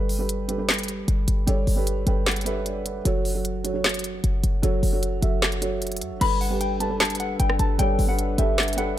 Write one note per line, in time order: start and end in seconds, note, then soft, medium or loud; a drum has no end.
0.00 1.04 G1 loud
0.00 0.15 G3 loud
0.00 0.15 G4 medium
0.00 0.15 A4 medium
0.00 0.15 B4 loud
0.09 open hi-hat medium
0.18 0.44 G3 medium
0.18 0.44 G4 medium
0.18 0.45 A4 medium
0.18 0.45 B4 medium
0.29 closed hi-hat medium
0.48 0.56 G3 medium
0.48 0.57 G4 medium
0.48 0.57 A4 medium
0.48 0.58 B4 loud
0.48 closed hi-hat medium
0.58 1.26 G3 medium
0.58 1.26 G4 medium
0.58 1.26 A4 medium
0.58 1.26 B4 medium
0.69 snare loud
0.69 clap loud
0.69 closed hi-hat medium
0.74 closed hi-hat medium
0.79 closed hi-hat medium
0.83 closed hi-hat medium
0.88 closed hi-hat medium
1.08 1.27 G1 loud
1.08 closed hi-hat medium
1.28 1.47 G1 loud
1.28 closed hi-hat medium
1.47 1.66 G1 loud
1.47 1.72 G3 loud
1.47 1.73 G4 loud
1.47 1.73 A4 loud
1.47 1.73 C#5 loud
1.47 closed hi-hat medium
1.67 2.05 G1 loud
1.67 open hi-hat medium
1.76 2.02 G3 medium
1.76 2.02 G4 medium
1.76 2.02 A4 medium
1.76 2.03 B4 loud
1.87 closed hi-hat medium
2.06 3.01 G1 loud
2.06 2.40 G3 medium
2.06 2.40 G4 medium
2.06 2.41 A4 medium
2.06 2.41 B4 loud
2.06 2.25 G5 medium
2.06 closed hi-hat medium
2.26 2.45 F#5 medium
2.26 snare loud
2.26 clap medium
2.26 closed hi-hat medium
2.31 closed hi-hat medium
2.36 closed hi-hat medium
2.41 closed hi-hat medium
2.45 2.96 G3 medium
2.45 2.96 G4 medium
2.45 2.97 A4 medium
2.45 2.84 B4 loud
2.45 2.64 E5 medium
2.45 closed hi-hat medium
2.66 2.84 D5 medium
2.66 closed hi-hat medium
2.86 3.04 B4 medium
2.86 closed hi-hat medium
3.05 4.20 F#1 loud
3.05 3.30 F#3 loud
3.05 3.31 F#4 loud
3.05 3.31 A4 loud
3.05 3.31 C#5 loud
3.05 closed hi-hat medium
3.25 open hi-hat medium
3.34 3.60 F#3 medium
3.34 3.60 F#4 medium
3.34 3.60 A4 medium
3.34 3.61 C#5 loud
3.45 closed hi-hat medium
3.64 3.72 F#3 medium
3.64 3.73 F#4 medium
3.64 3.73 A4 medium
3.64 3.73 C#5 loud
3.64 closed hi-hat medium
3.74 4.41 F#3 medium
3.74 4.42 F#4 medium
3.74 4.42 A4 medium
3.74 4.42 C#5 loud
3.84 snare loud
3.84 clap medium
3.84 closed hi-hat medium
3.89 closed hi-hat medium
3.94 closed hi-hat medium
3.99 closed hi-hat medium
4.04 closed hi-hat medium
4.24 4.43 F#1 loud
4.24 closed hi-hat medium
4.44 4.62 F#1 loud
4.44 closed hi-hat medium
4.62 4.82 F#1 loud
4.62 4.88 F#3 loud
4.62 4.88 F#4 loud
4.62 4.89 A4 loud
4.62 4.89 C#5 loud
4.62 closed hi-hat medium
4.83 5.21 F#1 loud
4.83 open hi-hat medium
4.92 5.18 F#3 medium
4.92 5.18 F#4 medium
4.92 5.18 A4 medium
4.92 5.19 C#5 loud
5.03 closed hi-hat medium
5.21 6.03 F#1 loud
5.21 5.56 F#3 medium
5.21 5.56 F#4 medium
5.21 5.56 A4 medium
5.21 5.56 E5 medium
5.21 closed hi-hat medium
5.42 snare loud
5.42 clap medium
5.42 closed hi-hat medium
5.52 closed hi-hat medium
5.61 6.12 F#3 loud
5.61 6.12 F#4 medium
5.61 6.13 A4 medium
5.61 6.13 C#5 loud
5.61 closed hi-hat medium
5.82 closed hi-hat medium
5.87 closed hi-hat medium
5.92 closed hi-hat medium
5.97 closed hi-hat medium
6.01 6.13 F#2 loud
6.01 closed hi-hat medium
6.11 6.21 F#1 loud
6.21 7.36 G1 loud
6.21 6.46 G3 loud
6.21 8.99 G3 medium
6.21 8.99 D4 medium
6.21 6.46 G4 medium
6.21 8.99 A4 medium
6.21 6.47 A4 loud
6.21 8.99 B4 medium
6.21 6.47 B4 loud
6.21 6.36 B5 loud
6.21 closed hi-hat medium
6.21 crash loud
6.41 6.56 F#5 medium
6.41 open hi-hat medium
6.50 6.76 G3 medium
6.50 6.76 G4 medium
6.50 6.76 A4 medium
6.50 6.76 B4 loud
6.61 6.76 G5 medium
6.61 closed hi-hat medium
6.80 6.88 G3 medium
6.80 6.88 G4 medium
6.80 6.89 A4 medium
6.80 6.89 B4 loud
6.80 6.95 A5 medium
6.80 closed hi-hat medium
6.89 7.57 G3 medium
6.89 7.57 G4 medium
6.89 7.58 A4 medium
6.89 7.58 B4 loud
7.00 7.15 A5 loud
7.00 snare loud
7.00 clap loud
7.00 closed hi-hat medium
7.05 closed hi-hat medium
7.10 closed hi-hat medium
7.15 closed hi-hat medium
7.20 7.35 F#5 medium
7.20 closed hi-hat medium
7.40 7.59 G1 loud
7.40 7.54 G5 medium
7.40 closed hi-hat medium
7.50 cross-stick loud
7.59 7.78 G1 loud
7.59 7.74 A5 medium
7.59 closed hi-hat medium
7.78 7.98 G1 loud
7.78 8.04 G3 loud
7.78 8.04 G4 loud
7.78 8.04 A4 loud
7.78 8.05 C#5 loud
7.78 8.07 G5 loud
7.78 closed hi-hat medium
7.99 8.37 G1 loud
7.99 open hi-hat medium
8.08 8.33 G3 medium
8.08 8.34 G4 medium
8.08 8.34 A4 medium
8.08 8.34 B4 loud
8.08 8.36 F#5 medium
8.19 closed hi-hat medium
8.38 8.99 G1 loud
8.38 8.72 G3 medium
8.38 8.72 G4 medium
8.38 8.72 A4 medium
8.38 8.72 B4 loud
8.38 8.75 E5 medium
8.38 8.57 G5 medium
8.38 closed hi-hat medium
8.58 8.76 F#5 medium
8.58 snare loud
8.58 clap medium
8.58 closed hi-hat medium
8.63 closed hi-hat medium
8.68 closed hi-hat medium
8.73 8.99 G3 loud
8.73 closed hi-hat medium
8.77 8.99 G4 medium
8.77 8.99 A4 medium
8.77 8.99 B4 loud
8.77 8.96 E5 medium
8.77 8.93 F#5 medium
8.77 closed hi-hat medium